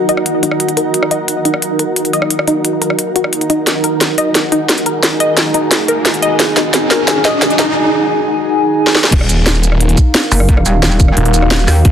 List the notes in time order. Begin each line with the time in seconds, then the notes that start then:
Already playing: D#4 F#4 A#4 F5
0.09 D#5, closed hi-hat
0.17 cross-stick
0.26 closed hi-hat
0.43 D#4, closed hi-hat
0.51 cross-stick
0.60 closed hi-hat
0.69 closed hi-hat
0.77 A#4, closed hi-hat
0.94 closed hi-hat
1.03 cross-stick
1.11 D#5, closed hi-hat
1.28 closed hi-hat
1.45 D#4, closed hi-hat
1.54 cross-stick
1.62 closed hi-hat
1.79 A#4, closed hi-hat
1.96 closed hi-hat
2.05 closed hi-hat
2.13 D#5, closed hi-hat
2.22 cross-stick
2.30 closed hi-hat
2.39 cross-stick
2.48 D#4, closed hi-hat
2.65 closed hi-hat
2.82 A#4, closed hi-hat
2.90 cross-stick
2.99 closed hi-hat
3.16 F#4, closed hi-hat
3.24 cross-stick
3.33 closed hi-hat
3.41 closed hi-hat
3.50 D#4, closed hi-hat
3.67 G#4 G#5, snare, closed hi-hat, riser
3.84 A#4, closed hi-hat
4.01 snare, closed hi-hat
4.18 D#5, closed hi-hat
4.35 snare, closed hi-hat
4.52 D#4, closed hi-hat
4.69 snare, closed hi-hat
4.78 closed hi-hat
4.86 A#4, closed hi-hat
5.03 snare, closed hi-hat
5.20 D#5, closed hi-hat
5.37 snare, closed hi-hat
5.54 D#4, closed hi-hat
5.71 snare, closed hi-hat
5.88 A#4, closed hi-hat
6.05 snare, closed hi-hat
6.14 closed hi-hat
6.22 D#5, closed hi-hat
6.40 snare, closed hi-hat
6.57 D#4, snare, closed hi-hat
6.74 snare, closed hi-hat
6.91 A#4, snare, closed hi-hat
7.08 snare, closed hi-hat
7.25 D#5, snare, closed hi-hat
7.42 snare, closed hi-hat
7.50 closed hi-hat
7.59 D#4, snare, closed hi-hat
8.87 snare
8.95 snare
9.04 snare
9.12 D#1 D#4 A#4 F5, kick, closed hi-hat, crash
9.21 cross-stick
9.29 closed hi-hat, shaker
9.46 snare, closed hi-hat
9.55 shaker
9.63 closed hi-hat, shaker
9.69 A#4, cross-stick
9.80 closed hi-hat
9.89 closed hi-hat
9.98 kick, closed hi-hat, shaker
10.14 F#4, snare, closed hi-hat
10.23 shaker
10.32 F#1, open hi-hat, shaker
10.40 cross-stick
10.49 kick, closed hi-hat
10.57 cross-stick
10.66 D#1, closed hi-hat, shaker
10.83 snare, closed hi-hat
10.91 shaker
11.00 kick, closed hi-hat, shaker
11.08 cross-stick
11.17 D#1, closed hi-hat
11.25 closed hi-hat
11.34 closed hi-hat, shaker
11.42 cross-stick
11.51 snare, closed hi-hat
11.59 shaker
11.68 D#2, snare, open hi-hat, shaker
11.85 D#1, kick, closed hi-hat